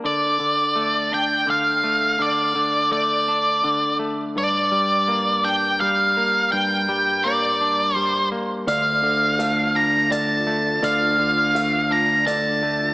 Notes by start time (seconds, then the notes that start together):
0.04 D3 D5
0.40 D3
0.76 A3
1.12 D4 G5
1.47 D3 F5
1.84 A3
2.19 D3 D5
2.55 D3
2.91 A3 D5
3.28 D4
3.64 D3
3.99 A3
4.36 G2 D5
4.72 G3
5.08 A#3
5.44 D4 G5
5.80 G3 F5
6.17 A#3
6.52 G2 G5
6.89 G3
7.24 A#3 D5
7.61 D4
7.96 G3 C5
8.32 A#3
8.67 D2 D3 A3 D4 F4 D5 F5, closed hi-hat
9.03 D3
9.39 A3 F5, closed hi-hat
9.75 D4 A#5
10.10 D3 D5 A5, closed hi-hat
10.47 A3
10.82 D2 D3 D5 F5, closed hi-hat
11.19 D3
11.55 A3 F5, closed hi-hat
11.91 D4 A#5
12.26 D3 D5 A5, closed hi-hat
12.63 A3